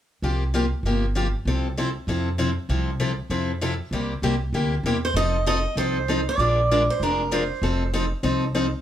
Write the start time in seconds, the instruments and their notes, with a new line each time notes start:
0.22 upright bass C2, steel-string acoustic guitar C3 F3 A#3 F4 G4
0.54 steel-string acoustic guitar C3 F3 A#3 F4 G4
0.83 upright bass G1, steel-string acoustic guitar C3 F3 A#3 F4 G4
1.15 steel-string acoustic guitar C3 F3 A#3 F4 G4
1.45 upright bass C2, steel-string acoustic guitar C3 F3 C4 E4 A4
1.77 steel-string acoustic guitar C3 F3 C4 E4 A4
2.07 upright bass F2, steel-string acoustic guitar C3 F3 C4 E4 A4
2.38 steel-string acoustic guitar C3 F3 C4 E4 A4
2.69 upright bass C2, steel-string acoustic guitar C3 F3 C4 E4 A4
3.00 steel-string acoustic guitar C3 F3 C4 E4 A4
3.30 upright bass F2, steel-string acoustic guitar C3 F3 C4 E4 A4
3.61 steel-string acoustic guitar C3 F3 C4 E4 A4
3.91 upright bass C2, steel-string acoustic guitar C3 G3 A#3 E4 G4
4.22 upright bass C2, steel-string acoustic guitar C3 G3 A#3 E4 G4
4.53 upright bass D2, steel-string acoustic guitar C3 G3 A#3 E4 G4
4.83 upright bass E2, steel-string acoustic guitar C3 G3 A#3 E4 G4
5.05 steel-string acoustic guitar C5
5.14 upright bass F1, steel-string acoustic guitar F3 C4 D#4 A4 D#5
5.46 steel-string acoustic guitar F3 C4 D#4 A4 D#5
5.76 upright bass C2, steel-string acoustic guitar F3 C4 D#4 A4 C5
6.08 steel-string acoustic guitar F3 C4 D#4 A4
6.29 steel-string acoustic guitar D5
6.38 upright bass A#1, steel-string acoustic guitar F3 G#3 D4 F4 A#4
6.71 steel-string acoustic guitar F3 G#3 D4 F4 A#4
6.90 steel-string acoustic guitar C5
7.00 upright bass F1, steel-string acoustic guitar F3 G#3 D4 F4 A#4
7.31 steel-string acoustic guitar F3 G#3 D4 F4 A#4 C5
7.62 upright bass F1, steel-string acoustic guitar F3 C4 D#4 A4
7.93 steel-string acoustic guitar F3 C4 D#4 A4
8.23 upright bass C2, steel-string acoustic guitar F3 C4 D#4 A4
8.55 steel-string acoustic guitar F3 C4 D#4 A4